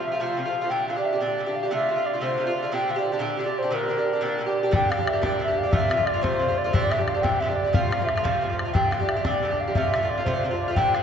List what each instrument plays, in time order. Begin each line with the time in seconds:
Already playing: bouzouki F3 A3 F4
0.05 flute E5
0.12 bouzouki F3 A3 F4
0.20 bouzouki C3 F3 A3 F4, flute F5
0.37 bouzouki C3 F3 A3 F4
0.45 bouzouki F3 A3 F4
0.61 bouzouki F3 A3 F4
0.70 bouzouki A#2 D3 D4 G4, flute G5
0.88 bouzouki A#2 D3 D4 G4, flute F5
0.96 bouzouki D3 D4 G4
1.05 flute E5
1.12 bouzouki D3 D4 G4
1.20 bouzouki A#2 D3 D4 G4, flute D5
1.38 bouzouki A#2 D3 D4 G4
1.46 bouzouki D3 D4 G4
1.55 flute F5
1.63 bouzouki D3 D4 G4
1.71 bouzouki C3 D3 A3 F4, flute E5
1.89 bouzouki C3 D3 A3 F4
1.96 bouzouki D3 A3 F4
2.06 flute D5
2.13 bouzouki D3 A3 F4
2.21 bouzouki C3 D3 A3 F4, flute C5
2.38 bouzouki C3 D3 A3 F4
2.47 bouzouki D3 A3 F4
2.56 flute D5
2.62 bouzouki D3 A3 F4
2.72 bouzouki A#2 D3 D4 G4, flute G5
2.88 bouzouki A#2 D3 D4 G4, flute F5
2.96 bouzouki D3 D4 G4
3.12 bouzouki D3 D4 G4
3.19 bouzouki A#2 D3 D4 G4
3.37 bouzouki A#2 D3 D4 G4
3.42 bouzouki G4, flute D5
3.47 bouzouki D3 D4
3.58 flute C5
3.62 bouzouki D3 D4 G4
3.71 bouzouki A#2 D3 D4 G4, flute A#4
3.88 bouzouki A#2 D3 D4 G4
3.97 bouzouki D3 D4 G4
4.13 bouzouki D3 D4 G4
4.21 bouzouki A#2 D3 D4 G4
4.38 bouzouki A#2 D3 G4
4.46 bouzouki D3 D4 G4
4.63 bouzouki D3 D4 G4
4.71 bouzouki A#2 D3 D4 G4, flute G5, bodhran
4.82 bodhran
4.89 bouzouki A#2 D3 D4 G4, flute F5, bodhran
4.97 bouzouki D3 D4 G4
5.07 flute E5, bodhran
5.13 bouzouki D3 D4 G4
5.22 bouzouki A#2 D3 D4 G4, flute D5, bodhran
5.39 bouzouki A#2 D3 D4 G4, flute E5
5.48 bouzouki D3 D4 G4
5.58 flute F5
5.63 bouzouki D3 D4 G4
5.71 bouzouki C3 D3 A3 F4, flute E5, bodhran
5.82 bodhran
5.89 bouzouki C3 D3 A3 F4, bodhran
5.97 bouzouki D3 A3 F4
6.06 flute D5, bodhran
6.14 bouzouki D3 A3 F4
6.21 bouzouki C3 D3 A3 F4, flute C5, bodhran
6.39 bouzouki C3 D3 A3 F4
6.48 bouzouki D3 A3 F4
6.57 flute D5
6.64 bouzouki D3 A3 F4
6.73 bouzouki A#2 D3 D4 G4, flute D5, bodhran
6.83 bodhran
6.90 bouzouki A#2 D3 D4 G4, flute E5, bodhran
6.98 bouzouki D3 D4 G4
7.06 flute F5, bodhran
7.14 bouzouki D3 D4 G4
7.22 bouzouki A#2 D3 D4 G4, flute G5, bodhran
7.40 bouzouki A#2 D3 D4 G4, flute E5
7.49 bouzouki D3 D4 G4
7.55 flute D5
7.64 bouzouki D3 D4 G4
7.72 bouzouki C3 F3 A3 F4, flute F5, bodhran
7.84 bodhran
7.91 bouzouki C3 F3 A3 F4, bodhran
7.99 bouzouki F3 A3 F4
8.06 flute E5, bodhran
8.15 bouzouki F3 A3 F4, bodhran
8.22 bouzouki C3 F3 A3 F4, flute F5, bodhran
8.41 bouzouki C3 F3 A3 F4
8.49 bouzouki F3 A3 F4
8.59 bodhran
8.65 bouzouki F3 A3 F4
8.73 bouzouki A#2 D3 D4 G4, flute G5, bodhran
8.84 bodhran
8.91 bouzouki A#2 D3 G4, flute F5, bodhran
9.00 bouzouki D3 D4 G4
9.08 flute E5, bodhran
9.16 bouzouki D3 D4 G4
9.25 bouzouki A#2 D3 D4 G4, flute D5, bodhran
9.43 bouzouki A#2 D3 D4 G4
9.51 bouzouki D3 D4 G4
9.60 flute F5
9.67 bouzouki D3 D4 G4
9.75 bouzouki C3 D3 A3 F4, flute E5, bodhran
9.85 bodhran
9.94 bouzouki C3 D3 A3 F4, bodhran
10.02 bouzouki D3 A3 F4
10.09 flute D5
10.18 bouzouki D3 A3 F4
10.25 bouzouki C3 D3 A3 F4, flute C5, bodhran
10.37 flute C5
10.43 bouzouki C3 D3 A3 F4
10.48 bouzouki F4, flute C5
10.53 bouzouki D3 A3
10.58 flute D5
10.68 bouzouki D3 A3 F4
10.74 bouzouki A#2 D3 D4 G4, flute G5, bodhran
10.85 bodhran
10.94 bouzouki A#2 D3 D4 G4, flute F5, bodhran